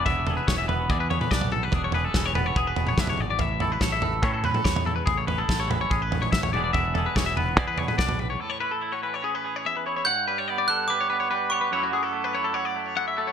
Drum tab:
SD |----o-------o---|----o-------o---|----o-------o---|----o-------o---|
T2 |-----------o-oo-|------o----o-oo-|-----------o-oo-|------o----o-oo-|
FT |o-o---o---o--o--|o-o---o---o--o--|o-o---o---o--o--|o-o---o---o--o--|
BD |o---o---o---o---|o---o---o---o---|o---o---o---o---|o---o---o---o---|

SD |----o-------o---|----------------|----------------|----------------|
T2 |-----------o-oo-|----------------|----------------|----------------|
FT |o-o---o---o--o--|----------------|----------------|----------------|
BD |o---o---o---o---|----------------|----------------|----------------|